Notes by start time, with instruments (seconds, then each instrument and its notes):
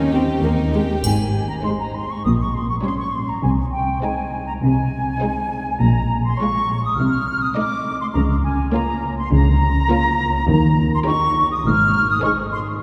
Already playing: double bass section D#2, cello section D#2, viola section C#4, violin section D#4 A#4, xylophone G5
0.13 viola section C4, violin section G4
0.43 cello section D#2, double bass section D#2, viola section A#3, violin section D#4 A#4
0.74 viola section G#3, violin section G4
1.04 double bass section G#1, cello section G#2, flute section G#5, triangle
1.49 flute section A#5
1.64 viola section G#3, violin section D#4 C5, flute section C6
1.80 flute section A#5
1.94 flute section C6
2.10 flute section C#6
2.24 double bass section A#1, cello section A#2, flute section D#6
2.40 flute section C#6
2.54 flute section C6
2.69 flute section C#6
2.83 viola section G3, violin section C#4 C#5, flute section C6
2.99 flute section C#6
3.13 flute section C6
3.29 flute section A#5
3.43 double bass section C2, cello section C3, flute section G#5
3.72 flute section G5
4.02 viola section G#3, violin section D#4 C5, flute section G#5
4.47 flute section A#5
4.62 double bass section C2, cello section C3, flute section G#5
5.21 viola section G#3, violin section D#4 C5
5.80 double bass section A#1, cello section A#2, flute section A#5
6.24 flute section C6
6.39 viola section G#3, violin section F4 C#5, flute section C#6
6.83 flute section D#6
6.97 double bass section C2, cello section C3, flute section F6
7.41 flute section D#6
7.56 viola section A3, violin section D#4 D#5, flute section D6
8.01 flute section C6
8.14 double bass section C#2, cello section C#3, flute section A#5
8.43 flute section G#5
8.73 viola section A#3, violin section F4 C#5, flute section A#5
9.18 flute section C6
9.32 double bass section C#2, cello section C#3, flute section A#5
9.90 viola section A#3, violin section F4 C#5
10.49 double bass section D#2, cello section D#3, flute section A#5
10.94 flute section C6
11.07 viola section D#4, violin section G4 C#5, flute section C#6
11.52 flute section D#6
11.65 double bass section G#1, cello section G#2, flute section F6
12.09 flute section D#6
12.23 viola section D#4, violin section G#4 C5, flute section C#6
12.53 flute section C6